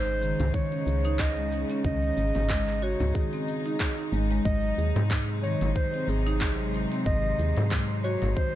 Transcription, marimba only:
0, 0, Header, 1, 2, 480
1, 0, Start_track
1, 0, Tempo, 652174
1, 1357, Time_signature, 4, 2, 24, 8
1, 6294, End_track
2, 0, Start_track
2, 0, Title_t, "Marimba"
2, 0, Program_c, 0, 12
2, 0, Note_on_c, 0, 63, 82
2, 147, Note_off_c, 0, 63, 0
2, 158, Note_on_c, 0, 51, 97
2, 235, Note_off_c, 0, 51, 0
2, 396, Note_on_c, 0, 51, 82
2, 518, Note_off_c, 0, 51, 0
2, 534, Note_on_c, 0, 61, 80
2, 633, Note_off_c, 0, 61, 0
2, 773, Note_on_c, 0, 63, 107
2, 999, Note_off_c, 0, 63, 0
2, 1011, Note_on_c, 0, 56, 77
2, 1112, Note_off_c, 0, 56, 0
2, 1254, Note_on_c, 0, 61, 73
2, 1313, Note_off_c, 0, 61, 0
2, 1357, Note_on_c, 0, 51, 74
2, 1586, Note_off_c, 0, 51, 0
2, 1596, Note_on_c, 0, 68, 74
2, 1826, Note_off_c, 0, 68, 0
2, 1837, Note_on_c, 0, 56, 80
2, 1914, Note_off_c, 0, 56, 0
2, 2078, Note_on_c, 0, 66, 102
2, 2206, Note_off_c, 0, 66, 0
2, 2317, Note_on_c, 0, 51, 79
2, 2438, Note_off_c, 0, 51, 0
2, 2453, Note_on_c, 0, 60, 74
2, 2552, Note_off_c, 0, 60, 0
2, 2692, Note_on_c, 0, 63, 98
2, 2792, Note_off_c, 0, 63, 0
2, 2932, Note_on_c, 0, 63, 75
2, 2992, Note_off_c, 0, 63, 0
2, 3040, Note_on_c, 0, 56, 79
2, 3115, Note_off_c, 0, 56, 0
2, 3176, Note_on_c, 0, 56, 91
2, 3271, Note_off_c, 0, 56, 0
2, 3280, Note_on_c, 0, 56, 81
2, 3508, Note_off_c, 0, 56, 0
2, 3520, Note_on_c, 0, 68, 74
2, 3748, Note_off_c, 0, 68, 0
2, 3762, Note_on_c, 0, 63, 83
2, 3989, Note_off_c, 0, 63, 0
2, 4001, Note_on_c, 0, 51, 105
2, 4076, Note_off_c, 0, 51, 0
2, 4239, Note_on_c, 0, 51, 76
2, 4360, Note_off_c, 0, 51, 0
2, 4374, Note_on_c, 0, 60, 77
2, 4473, Note_off_c, 0, 60, 0
2, 4612, Note_on_c, 0, 63, 104
2, 4838, Note_off_c, 0, 63, 0
2, 4854, Note_on_c, 0, 56, 73
2, 4953, Note_off_c, 0, 56, 0
2, 5096, Note_on_c, 0, 60, 71
2, 5154, Note_off_c, 0, 60, 0
2, 5198, Note_on_c, 0, 51, 80
2, 5427, Note_off_c, 0, 51, 0
2, 5438, Note_on_c, 0, 68, 78
2, 5667, Note_off_c, 0, 68, 0
2, 5677, Note_on_c, 0, 56, 81
2, 5754, Note_off_c, 0, 56, 0
2, 5920, Note_on_c, 0, 66, 101
2, 6046, Note_off_c, 0, 66, 0
2, 6157, Note_on_c, 0, 51, 76
2, 6279, Note_off_c, 0, 51, 0
2, 6294, End_track
0, 0, End_of_file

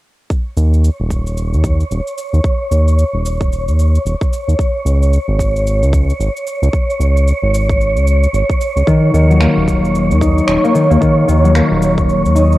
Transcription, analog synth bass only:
0, 0, Header, 1, 2, 480
1, 0, Start_track
1, 0, Tempo, 535714
1, 271, Time_signature, 4, 2, 24, 8
1, 11272, End_track
2, 0, Start_track
2, 0, Title_t, "Analog synth bass"
2, 0, Program_c, 0, 38
2, 508, Note_on_c, 0, 39, 91
2, 805, Note_off_c, 0, 39, 0
2, 894, Note_on_c, 0, 27, 81
2, 1369, Note_on_c, 0, 39, 83
2, 1383, Note_off_c, 0, 27, 0
2, 1649, Note_off_c, 0, 39, 0
2, 1711, Note_on_c, 0, 27, 84
2, 1800, Note_off_c, 0, 27, 0
2, 2090, Note_on_c, 0, 39, 79
2, 2152, Note_off_c, 0, 39, 0
2, 2430, Note_on_c, 0, 39, 88
2, 2726, Note_off_c, 0, 39, 0
2, 2808, Note_on_c, 0, 27, 76
2, 3291, Note_on_c, 0, 39, 82
2, 3305, Note_off_c, 0, 27, 0
2, 3570, Note_off_c, 0, 39, 0
2, 3632, Note_on_c, 0, 27, 83
2, 3720, Note_off_c, 0, 27, 0
2, 4013, Note_on_c, 0, 39, 78
2, 4074, Note_off_c, 0, 39, 0
2, 4348, Note_on_c, 0, 37, 88
2, 4645, Note_off_c, 0, 37, 0
2, 4732, Note_on_c, 0, 32, 88
2, 5215, Note_on_c, 0, 37, 85
2, 5229, Note_off_c, 0, 32, 0
2, 5492, Note_off_c, 0, 37, 0
2, 5552, Note_on_c, 0, 32, 83
2, 5640, Note_off_c, 0, 32, 0
2, 5933, Note_on_c, 0, 37, 79
2, 5993, Note_off_c, 0, 37, 0
2, 6269, Note_on_c, 0, 37, 86
2, 6566, Note_off_c, 0, 37, 0
2, 6653, Note_on_c, 0, 32, 82
2, 7132, Note_on_c, 0, 37, 88
2, 7146, Note_off_c, 0, 32, 0
2, 7411, Note_off_c, 0, 37, 0
2, 7467, Note_on_c, 0, 32, 82
2, 7557, Note_off_c, 0, 32, 0
2, 7849, Note_on_c, 0, 37, 79
2, 7912, Note_off_c, 0, 37, 0
2, 8187, Note_on_c, 0, 39, 91
2, 8485, Note_off_c, 0, 39, 0
2, 8572, Note_on_c, 0, 27, 82
2, 9056, Note_on_c, 0, 39, 84
2, 9069, Note_off_c, 0, 27, 0
2, 9332, Note_off_c, 0, 39, 0
2, 9391, Note_on_c, 0, 27, 82
2, 9480, Note_off_c, 0, 27, 0
2, 9775, Note_on_c, 0, 39, 77
2, 9834, Note_off_c, 0, 39, 0
2, 10112, Note_on_c, 0, 39, 87
2, 10407, Note_off_c, 0, 39, 0
2, 10492, Note_on_c, 0, 27, 81
2, 10973, Note_on_c, 0, 39, 86
2, 10986, Note_off_c, 0, 27, 0
2, 11251, Note_off_c, 0, 39, 0
2, 11272, End_track
0, 0, End_of_file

